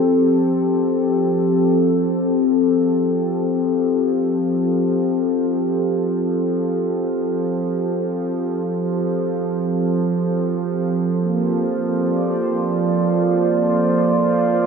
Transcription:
0, 0, Header, 1, 2, 480
1, 0, Start_track
1, 0, Key_signature, -1, "major"
1, 0, Tempo, 500000
1, 14077, End_track
2, 0, Start_track
2, 0, Title_t, "Analog synth pad"
2, 0, Program_c, 0, 89
2, 0, Note_on_c, 0, 53, 61
2, 0, Note_on_c, 0, 60, 68
2, 0, Note_on_c, 0, 67, 74
2, 0, Note_on_c, 0, 69, 79
2, 10739, Note_on_c, 0, 58, 71
2, 10994, Note_on_c, 0, 65, 88
2, 11543, Note_on_c, 0, 74, 74
2, 11671, Note_on_c, 0, 72, 75
2, 12293, Note_off_c, 0, 67, 0
2, 13343, Note_off_c, 0, 60, 0
2, 13902, Note_off_c, 0, 69, 0
2, 14077, Note_off_c, 0, 53, 0
2, 14077, Note_off_c, 0, 58, 0
2, 14077, Note_off_c, 0, 65, 0
2, 14077, Note_off_c, 0, 72, 0
2, 14077, Note_off_c, 0, 74, 0
2, 14077, End_track
0, 0, End_of_file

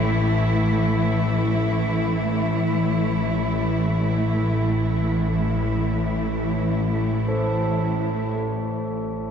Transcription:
0, 0, Header, 1, 5, 480
1, 0, Start_track
1, 0, Tempo, 500000
1, 8937, End_track
2, 0, Start_track
2, 0, Title_t, "Church bells"
2, 0, Program_c, 0, 14
2, 6990, Note_on_c, 0, 69, 48
2, 8937, Note_off_c, 0, 69, 0
2, 8937, End_track
3, 0, Start_track
3, 0, Title_t, "Singing bowl"
3, 0, Program_c, 1, 14
3, 8017, Note_on_c, 1, 57, 48
3, 8021, Note_on_c, 1, 69, 47
3, 8937, Note_off_c, 1, 57, 0
3, 8937, Note_off_c, 1, 69, 0
3, 8937, End_track
4, 0, Start_track
4, 0, Title_t, "Cello section"
4, 0, Program_c, 2, 48
4, 0, Note_on_c, 2, 52, 62
4, 0, Note_on_c, 2, 57, 65
4, 0, Note_on_c, 2, 64, 64
4, 8012, Note_off_c, 2, 57, 0
4, 8013, Note_off_c, 2, 52, 0
4, 8013, Note_off_c, 2, 64, 0
4, 8937, End_track
5, 0, Start_track
5, 0, Title_t, "Synth drone"
5, 0, Program_c, 3, 95
5, 0, Note_on_c, 3, 33, 76
5, 0, Note_on_c, 3, 45, 71
5, 8004, Note_off_c, 3, 45, 0
5, 8010, Note_off_c, 3, 33, 0
5, 8016, Note_on_c, 3, 45, 71
5, 8022, Note_on_c, 3, 33, 65
5, 8937, Note_off_c, 3, 33, 0
5, 8937, Note_off_c, 3, 45, 0
5, 8937, End_track
0, 0, End_of_file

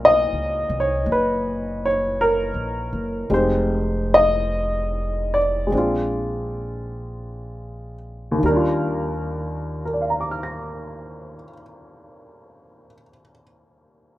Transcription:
0, 0, Header, 1, 3, 480
1, 0, Start_track
1, 0, Key_signature, -3, "major"
1, 0, Tempo, 1088929
1, 957, Tempo, 1138520
1, 1436, Time_signature, 4, 2, 24, 8
1, 1437, Tempo, 1181102
1, 1917, Tempo, 1237113
1, 2397, Tempo, 1310044
1, 2877, Tempo, 1405152
1, 5318, End_track
2, 0, Start_track
2, 0, Title_t, "Grand piano"
2, 0, Program_c, 0, 0
2, 0, Control_c, 0, 64, 127
2, 0, Note_on_c, 0, 46, 54
2, 0, Note_on_c, 0, 61, 49
2, 0, Note_on_c, 0, 63, 45
2, 0, Note_on_c, 0, 66, 53
2, 0, Note_on_c, 0, 70, 83
2, 22, Note_on_c, 0, 75, 95
2, 337, Note_off_c, 0, 75, 0
2, 353, Note_on_c, 0, 73, 72
2, 494, Note_off_c, 0, 73, 0
2, 494, Note_on_c, 0, 71, 76
2, 817, Note_off_c, 0, 71, 0
2, 818, Note_on_c, 0, 73, 77
2, 971, Note_off_c, 0, 73, 0
2, 973, Note_off_c, 0, 70, 0
2, 973, Note_on_c, 0, 70, 80
2, 1430, Note_off_c, 0, 63, 0
2, 1433, Note_on_c, 0, 56, 45
2, 1433, Note_on_c, 0, 60, 37
2, 1436, Note_off_c, 0, 46, 0
2, 1436, Note_off_c, 0, 61, 0
2, 1436, Note_on_c, 0, 63, 39
2, 1437, Note_off_c, 0, 66, 0
2, 1437, Note_on_c, 0, 67, 45
2, 1441, Control_c, 0, 64, 0
2, 1448, Note_on_c, 0, 72, 74
2, 1458, Note_off_c, 0, 70, 0
2, 1503, Control_c, 0, 64, 127
2, 1773, Note_off_c, 0, 72, 0
2, 1775, Note_on_c, 0, 75, 100
2, 2246, Note_on_c, 0, 74, 72
2, 2259, Note_off_c, 0, 75, 0
2, 2368, Note_off_c, 0, 56, 0
2, 2374, Note_on_c, 0, 56, 49
2, 2383, Note_off_c, 0, 60, 0
2, 2389, Note_on_c, 0, 60, 42
2, 2396, Note_off_c, 0, 63, 0
2, 2397, Note_off_c, 0, 67, 0
2, 2401, Control_c, 0, 64, 0
2, 2404, Note_on_c, 0, 62, 41
2, 2415, Note_on_c, 0, 65, 54
2, 2471, Control_c, 0, 64, 127
2, 3184, Note_off_c, 0, 74, 0
2, 3313, Note_on_c, 0, 39, 59
2, 3337, Note_on_c, 0, 51, 47
2, 3342, Note_off_c, 0, 56, 0
2, 3348, Note_off_c, 0, 60, 0
2, 3355, Note_off_c, 0, 62, 0
2, 3356, Control_c, 0, 64, 0
2, 3356, Note_on_c, 0, 55, 46
2, 3360, Note_off_c, 0, 65, 0
2, 3362, Note_on_c, 0, 70, 65
2, 3379, Note_on_c, 0, 62, 47
2, 3398, Note_on_c, 0, 65, 56
2, 3421, Control_c, 0, 64, 127
2, 3834, Note_off_c, 0, 70, 0
2, 3839, Note_on_c, 0, 70, 40
2, 3867, Note_on_c, 0, 74, 35
2, 3894, Note_on_c, 0, 77, 32
2, 3923, Note_on_c, 0, 82, 37
2, 3959, Note_on_c, 0, 86, 33
2, 3996, Note_on_c, 0, 89, 32
2, 4037, Note_on_c, 0, 94, 30
2, 4350, Note_off_c, 0, 39, 0
2, 4373, Note_off_c, 0, 51, 0
2, 4393, Note_off_c, 0, 55, 0
2, 4416, Note_off_c, 0, 62, 0
2, 4435, Note_off_c, 0, 65, 0
2, 4862, Note_off_c, 0, 70, 0
2, 4890, Note_off_c, 0, 74, 0
2, 4917, Note_off_c, 0, 77, 0
2, 4946, Note_off_c, 0, 82, 0
2, 4982, Note_off_c, 0, 86, 0
2, 5019, Note_off_c, 0, 89, 0
2, 5060, Note_off_c, 0, 94, 0
2, 5318, End_track
3, 0, Start_track
3, 0, Title_t, "Upright bass"
3, 0, Program_c, 1, 32
3, 0, Note_on_c, 1, 35, 79
3, 136, Note_off_c, 1, 35, 0
3, 143, Note_on_c, 1, 37, 49
3, 295, Note_off_c, 1, 37, 0
3, 306, Note_on_c, 1, 36, 62
3, 457, Note_off_c, 1, 36, 0
3, 467, Note_on_c, 1, 30, 68
3, 1096, Note_off_c, 1, 30, 0
3, 1113, Note_on_c, 1, 34, 54
3, 1262, Note_off_c, 1, 34, 0
3, 1275, Note_on_c, 1, 30, 56
3, 1426, Note_off_c, 1, 30, 0
3, 1432, Note_on_c, 1, 29, 74
3, 2379, Note_off_c, 1, 29, 0
3, 2395, Note_on_c, 1, 34, 71
3, 3337, Note_off_c, 1, 34, 0
3, 3352, Note_on_c, 1, 39, 70
3, 4375, Note_off_c, 1, 39, 0
3, 5318, End_track
0, 0, End_of_file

